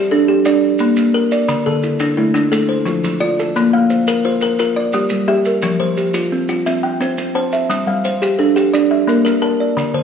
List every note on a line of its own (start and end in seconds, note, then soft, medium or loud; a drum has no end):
0.00 0.27 G4 medium
0.00 0.29 A4 medium
0.00 0.11 D5 medium
0.11 0.45 D4 medium
0.11 0.63 A4 medium
0.28 0.45 G4 medium
0.45 0.63 D4 medium
0.45 0.97 D5 medium
0.45 maracas medium
0.79 1.14 A#3 medium
0.79 maracas medium
0.96 1.32 A#3 medium
0.96 maracas medium
1.14 1.49 A#4 medium
1.32 1.66 D5 medium
1.32 maracas medium
1.48 1.83 D3 medium
1.48 maracas medium
1.66 2.01 D3 medium
1.66 2.18 A4 medium
1.83 2.35 E4 medium
1.83 maracas medium
1.99 2.33 D4 medium
1.99 maracas medium
2.17 2.51 A3 medium
2.17 2.69 E4 medium
2.34 2.52 D4 medium
2.34 maracas medium
2.52 2.69 A3 medium
2.52 3.04 A4 medium
2.52 maracas medium
2.69 3.21 C5 medium
2.85 3.20 F3 medium
2.85 3.39 F4 medium
2.85 maracas medium
3.04 3.39 F3 medium
3.04 maracas medium
3.20 3.55 F4 medium
3.20 3.72 D5 medium
3.39 3.73 A4 medium
3.39 maracas medium
3.56 3.90 A#3 medium
3.56 maracas medium
3.73 4.08 A#3 medium
3.73 4.25 F5 medium
3.90 4.42 C5 medium
3.90 maracas medium
4.07 4.41 A#4 medium
4.07 maracas medium
4.25 4.59 F4 medium
4.25 4.76 C5 medium
4.41 4.58 A#4 medium
4.41 maracas medium
4.59 4.77 F4 medium
4.59 5.11 A#4 medium
4.59 maracas medium
4.76 5.28 D5 medium
4.93 5.28 G3 medium
4.93 5.46 G4 medium
4.93 maracas medium
5.10 5.46 G3 medium
5.10 maracas medium
5.28 5.62 G4 medium
5.28 5.80 E5 medium
5.45 5.80 A#4 medium
5.45 maracas medium
5.62 5.97 F3 medium
5.62 maracas medium
5.80 6.15 F3 medium
5.80 6.32 C5 medium
5.97 6.49 G4 medium
5.97 maracas medium
6.14 6.48 F4 medium
6.14 maracas medium
6.32 6.66 C4 medium
6.49 6.66 F4 medium
6.49 maracas medium
6.66 6.84 C4 medium
6.66 7.18 E5 medium
6.66 maracas medium
6.83 7.35 G5 medium
7.01 7.35 C4 medium
7.01 7.53 C5 medium
7.01 maracas medium
7.18 7.52 C4 medium
7.18 maracas medium
7.35 7.70 C5 medium
7.35 7.87 A5 medium
7.52 7.87 E5 medium
7.52 maracas medium
7.70 8.04 G3 medium
7.70 maracas medium
7.87 8.21 G3 medium
7.87 8.39 F5 medium
8.05 8.56 C5 medium
8.05 maracas medium
8.22 8.55 G4 medium
8.22 maracas medium
8.39 8.73 D4 medium
8.39 8.90 A4 medium
8.56 8.73 G4 medium
8.56 maracas medium
8.73 8.91 D4 medium
8.73 9.25 D5 medium
8.73 maracas medium
8.91 9.42 E5 medium
9.07 9.42 A#3 medium
9.07 9.60 A#4 medium
9.07 maracas medium
9.25 9.60 A#3 medium
9.25 9.41 A#4 medium
9.25 maracas medium
9.42 9.76 A#4 medium
9.42 9.94 A5 medium
9.60 9.94 D5 medium
9.77 10.03 D3 medium
9.77 maracas medium
9.94 10.03 D3 medium
9.94 10.03 C5 medium